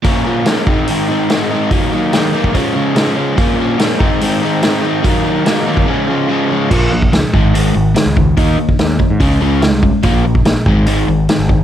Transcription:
<<
  \new Staff \with { instrumentName = "Overdriven electric guitar" } { \clef bass \time 4/4 \key bes \minor \tempo 4 = 144 <bes, f bes des'>8 <f bes des'>8 <bes, f bes des'>8 <aes, ees aes c' ees'>8 <ees aes c' ees'>8 <aes c' ees'>8 <aes, ees aes c' ees'>8 <aes c' ees'>8 | <ees ges bes ees'>8 <ges bes ees'>8 <ees ges bes ees'>8 <ees ges bes ees'>8 <des f aes des'>8 <f aes des'>8 <des f aes des'>8 <f aes des'>8 | <bes, f bes des'>8 <f bes des'>8 <bes, f bes des'>8 <aes, ees aes c' ees'>8 <ees aes c' ees'>8 <aes c' ees'>8 <aes, ees aes c' ees'>8 <aes c' ees'>8 | <ees ges bes ees'>8 <ges bes ees'>8 <ees ges bes ees'>8 <ees ges bes ees'>8 <des f aes des'>8 <f aes des'>8 <des f aes des'>8 <f aes des'>8 |
<bes, f bes>8 <bes, f>8 <bes, f>8 <aes, ees aes>8 <aes, ees aes>8 <aes, ees>8 <aes, ees>8 <aes, ees>8 | <ees bes ees'>8 <ees bes>8 <ees bes>8 <ees bes>8 <des aes des'>8 <des aes des'>8 <des aes>8 <des aes>8 | <bes, f bes>8 <bes, f>8 <bes, f>8 <aes, ees aes>8 <aes, ees aes>8 <aes, ees>8 <aes, ees>8 <aes, ees>8 | }
  \new Staff \with { instrumentName = "Picked electric bass" } { \clef bass \time 4/4 \key bes \minor r1 | r1 | r1 | r1 |
bes,,4 des,16 r16 aes,,4 aes,,8 r16 des,8. | ees,8 r8 ees,8 r16 aes,16 des,8 des,8. c,8 r16 | bes,,4 bes,,16 r16 aes,,4 aes,,8 r16 aes,,8. | }
  \new DrumStaff \with { instrumentName = "Drums" } \drummode { \time 4/4 <hho bd>4 <hho sn>8 bd8 hho4 <hho sn>4 | <hho bd>4 <hho sn>8. bd16 <hho bd>4 <hho sn>4 | <hho bd>4 <hho sn>8 bd8 hho4 <hho sn>4 | <hho bd>4 <hho sn>8. bd16 r4 r4 |
<cymc bd>8. bd16 <hho sn>8 bd8 hho4 <hho sn>8 bd8 | <hho bd>8. bd16 <hho sn>8 bd8 <hho bd>4 <hho sn>8 bd8 | <hho bd>8. bd16 <hho sn>8 bd8 hho4 <hho sn>8 bd8 | }
>>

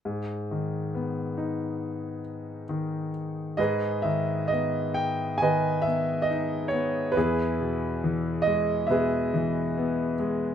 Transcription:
<<
  \new Staff \with { instrumentName = "Grand piano" } { \time 4/4 \key gis \minor \tempo 4 = 68 << { r1 | dis''8 e''8 dis''8 g''8 gis''8 e''8 dis''8 cis''8 | b'4. dis''8 e''4. r8 | } \\ { r1 | <gis' b'>2 <b' dis''>2 | <e' gis'>2 <gis' b'>2 | } >> }
  \new Staff \with { instrumentName = "Grand piano" } { \clef bass \time 4/4 \key gis \minor gis,8 dis8 b8 dis'4. dis4 | gis,8 dis8 b4 dis8 b8 dis'8 b8 | e,8 b,8 e8 gis8 b,8 e8 b8 gis8 | }
>>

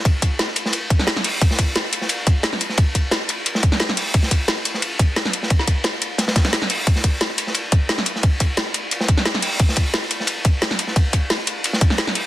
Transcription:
\new DrumStaff \with { instrumentName = "Drums" } \drummode { \time 4/4 \tempo 4 = 176 <hh bd cymr>8 <hh bd cymr>8 <hh cymr sn>8 <hh cymr>16 sn16 <hh cymr>8 <hh bd cymr>16 sn16 <hh cymr sn>16 sn16 <hh hho>8 | <hh bd cymr>16 sn16 <hh bd cymr>8 <hh cymr sn>8 <hh cymr>16 sn16 <hh cymr>8 <hh bd cymr>8 <hh cymr sn>16 sn16 <hh cymr>16 sn16 | <hh bd cymr>8 <hh bd cymr>8 <hh cymr sn>8 <hh cymr>8 <hh cymr>16 sn16 <hh bd cymr>16 sn16 <hh cymr sn>16 sn16 <hh hho>8 | <hh bd cymr>16 sn16 <hh bd cymr>8 <hh cymr sn>8 <hh cymr>16 sn16 <hh cymr>8 <hh bd cymr>8 <hh cymr sn>16 sn16 <hh cymr>16 sn16 |
<hh bd cymr>16 sn16 <hh bd cymr>8 <hh cymr sn>8 <hh cymr>8 <hh cymr sn>16 <cymr sn>16 <hh bd cymr sn>16 <cymr sn>16 <hh cymr sn>16 sn16 <hh hho>8 | <hh bd cymr>16 sn16 <hh bd cymr>8 <hh cymr sn>8 <hh cymr>16 sn16 <hh cymr>8 <hh bd cymr>8 <hh cymr sn>16 sn16 <hh cymr>16 sn16 | <hh bd cymr>8 <hh bd cymr>8 <hh cymr sn>8 <hh cymr>8 <hh cymr>16 sn16 <hh bd cymr>16 sn16 <hh cymr sn>16 sn16 <hh hho>8 | <hh bd cymr>16 sn16 <hh bd cymr>8 <hh cymr sn>8 <hh cymr>16 sn16 <hh cymr>8 <hh bd cymr>8 <hh cymr sn>16 sn16 <hh cymr>16 sn16 |
<hh bd cymr>8 <hh bd cymr>8 <hh cymr sn>8 <hh cymr>8 <hh cymr>16 sn16 <hh bd cymr>16 sn16 <hh cymr sn>16 sn16 <hh hho>8 | }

